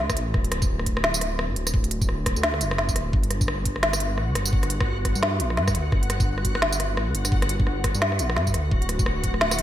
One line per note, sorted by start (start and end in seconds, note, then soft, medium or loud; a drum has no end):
0.00 0.18 D2 medium
0.10 kick medium
0.10 cross-stick medium
0.10 tambourine soft
0.17 0.33 A1 medium
0.17 closed hi-hat medium
0.34 1.38 D1 loud
0.34 kick loud
0.34 cross-stick medium
0.44 closed hi-hat soft
0.52 cross-stick medium
0.52 closed hi-hat medium
0.62 kick loud
0.62 tambourine soft
0.79 cross-stick medium
0.86 kick medium
0.86 closed hi-hat medium
0.97 cross-stick medium
1.04 snare loud
1.14 tambourine medium
1.21 cross-stick medium
1.21 closed hi-hat medium
1.39 1.51 D1 medium
1.39 cross-stick medium
1.49 1.56 A1 medium
1.56 1.73 D1 medium
1.56 closed hi-hat medium
1.67 cross-stick medium
1.67 tambourine medium
1.74 2.35 D1 loud
1.74 kick loud
1.84 closed hi-hat soft
1.91 closed hi-hat medium
2.01 kick loud
2.01 tambourine soft
2.09 cross-stick medium
2.26 kick medium
2.26 cross-stick medium
2.26 closed hi-hat medium
2.36 2.63 D2 loud
2.36 tambourine soft
2.43 snare loud
2.54 cross-stick medium
2.61 2.78 F#1 loud
2.61 closed hi-hat medium
2.61 tambourine soft
2.71 cross-stick medium
2.78 2.97 F#1 medium
2.78 snare medium
2.89 kick medium
2.89 tambourine soft
2.96 3.12 D1 medium
2.96 cross-stick medium
2.96 closed hi-hat medium
3.13 4.20 G1 medium
3.13 9.62 F#4 medium
3.13 9.62 F#5 medium
3.13 kick loud
3.23 closed hi-hat soft
3.31 cross-stick medium
3.31 closed hi-hat medium
3.41 kick loud
3.41 tambourine soft
3.48 cross-stick medium
3.65 kick medium
3.65 closed hi-hat medium
3.76 cross-stick medium
3.83 snare loud
3.93 cross-stick medium
3.93 tambourine medium
4.00 closed hi-hat medium
4.18 4.30 A1 medium
4.18 cross-stick medium
4.29 4.35 D2 medium
4.35 4.52 G1 medium
4.35 cross-stick medium
4.35 closed hi-hat medium
4.46 tambourine medium
4.53 5.14 G1 loud
4.53 kick loud
4.63 cross-stick medium
4.63 closed hi-hat soft
4.70 closed hi-hat medium
4.80 kick loud
4.80 cross-stick medium
5.05 kick medium
5.05 cross-stick medium
5.05 closed hi-hat medium
5.15 5.42 G2 medium
5.15 tambourine soft
5.23 cross-stick medium
5.23 snare loud
5.40 5.59 A#1 loud
5.40 closed hi-hat medium
5.50 cross-stick medium
5.57 5.77 G2 loud
5.57 snare medium
5.68 kick medium
5.68 cross-stick medium
5.68 tambourine soft
5.75 5.91 D2 medium
5.75 closed hi-hat medium
5.92 6.99 G1 loud
5.92 kick loud
5.92 cross-stick medium
6.03 closed hi-hat soft
6.10 cross-stick medium
6.10 closed hi-hat medium
6.20 kick loud
6.20 tambourine soft
6.38 cross-stick medium
6.45 kick medium
6.45 closed hi-hat medium
6.55 cross-stick medium
6.62 snare loud
6.72 tambourine medium
6.80 cross-stick medium
6.80 closed hi-hat medium
6.97 7.09 A1 medium
6.97 cross-stick medium
7.08 7.14 D2 medium
7.15 7.31 G1 medium
7.15 closed hi-hat medium
7.25 cross-stick medium
7.25 tambourine medium
7.32 7.93 G1 loud
7.32 kick loud
7.42 cross-stick medium
7.42 closed hi-hat soft
7.49 closed hi-hat medium
7.60 kick loud
7.67 cross-stick medium
7.84 kick medium
7.84 cross-stick medium
7.84 closed hi-hat medium
7.95 8.21 G2 medium
7.95 tambourine soft
8.02 snare loud
8.12 cross-stick medium
8.19 8.38 A#1 loud
8.19 closed hi-hat medium
8.19 tambourine soft
8.30 cross-stick medium
8.37 8.56 G2 medium
8.37 snare medium
8.47 kick medium
8.47 tambourine soft
8.54 8.71 D2 medium
8.54 cross-stick medium
8.54 closed hi-hat medium
8.71 9.62 D1 loud
8.71 kick loud
8.82 closed hi-hat soft
8.89 cross-stick medium
8.89 closed hi-hat medium
8.99 kick loud
8.99 tambourine soft
9.06 cross-stick medium
9.24 kick medium
9.24 closed hi-hat medium
9.34 cross-stick medium
9.41 snare loud
9.51 cross-stick medium
9.51 tambourine medium
9.59 closed hi-hat medium